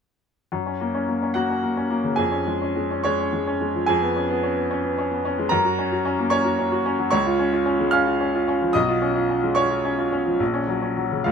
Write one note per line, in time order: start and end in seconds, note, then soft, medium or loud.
0.52 2.14 F#2 medium
0.66 0.89 C#4 soft
0.81 1.03 A#3 soft
0.94 1.16 C#4 soft
1.09 1.30 A#3 soft
1.22 1.44 C#4 soft
1.34 1.58 A#3 soft
1.34 2.14 F#4 soft
1.34 2.17 F#5 medium
1.50 1.71 C#4 soft
1.63 1.85 A#3 soft
1.77 1.99 C#4 soft
1.90 2.13 A#3 soft
2.04 2.18 C#3 soft
2.16 3.84 F2 medium
2.16 3.01 G#4 medium
2.16 3.04 G#5 medium
2.32 2.55 C#4 soft
2.47 2.70 G#3 soft
2.62 2.85 C#4 soft
2.76 2.99 G#3 soft
2.91 3.14 C#4 soft
3.03 3.28 G#3 medium
3.03 3.84 C#5 medium
3.03 3.88 C#6 medium
3.20 3.42 C#4 soft
3.33 3.55 G#3 soft
3.47 3.69 C#4 soft
3.61 3.83 G#3 medium
3.75 3.88 F3 soft
3.86 5.48 F2 medium
3.86 5.47 G#4 medium
3.86 5.51 G#5 medium
4.02 4.24 B3 soft
4.16 4.38 C#4 soft
4.30 4.52 B3 soft
4.43 4.65 C#4 soft
4.57 4.79 B3 soft
4.71 4.92 C#4 medium
4.84 5.06 B3 soft
4.98 5.20 C#4 medium
5.12 5.33 B3 medium
5.25 5.46 C#4 medium
5.38 5.52 G#3 soft
5.49 7.08 F#2 medium
5.49 6.28 A#4 medium
5.49 6.31 A#5 medium
5.65 5.86 F#4 medium
5.79 6.00 C#4 medium
5.92 6.14 F#4 medium
6.05 6.27 C#4 medium
6.19 6.40 A#3 medium
6.30 6.53 C#4 medium
6.30 7.08 C#5 medium
6.30 7.09 C#6 medium
6.45 6.67 F#4 soft
6.59 6.80 C#4 medium
6.72 6.93 F#4 medium
6.86 7.07 C#4 medium
6.99 7.12 F#3 soft
7.10 8.71 C#2 medium
7.10 7.89 C#5 medium
7.10 7.92 C#6 medium
7.26 7.48 F4 medium
7.39 7.61 C#4 medium
7.53 7.74 F4 medium
7.66 7.88 C#4 medium
7.79 8.01 G#3 medium
7.91 8.15 C#4 medium
7.91 8.70 F5 medium
7.91 8.74 F6 medium
8.07 8.29 F4 soft
8.21 8.42 C#4 soft
8.35 8.56 F4 medium
8.48 8.70 C#4 medium
8.62 8.75 F3 soft
8.73 10.36 B1 medium
8.73 9.52 D#5 medium
8.73 9.56 D#6 medium
8.88 9.10 F4 medium
9.02 9.24 C#4 soft
9.16 9.38 F4 medium
9.29 9.51 C#4 soft
9.43 9.65 G#3 soft
9.55 9.79 C#4 medium
9.55 10.36 C#5 medium
9.55 10.39 C#6 medium
9.71 9.93 F4 soft
9.85 10.07 C#4 medium
9.99 10.21 F4 medium
10.12 10.35 C#4 medium
10.26 10.40 F3 soft
10.40 11.24 A#1 medium
10.54 10.77 C#4 soft
10.67 10.91 F#3 soft
10.82 11.06 C#4 soft
10.97 11.20 F#3 soft
11.12 11.26 C#3 soft
11.24 11.32 C#2 medium
11.24 11.32 F4 medium
11.24 11.32 F5 medium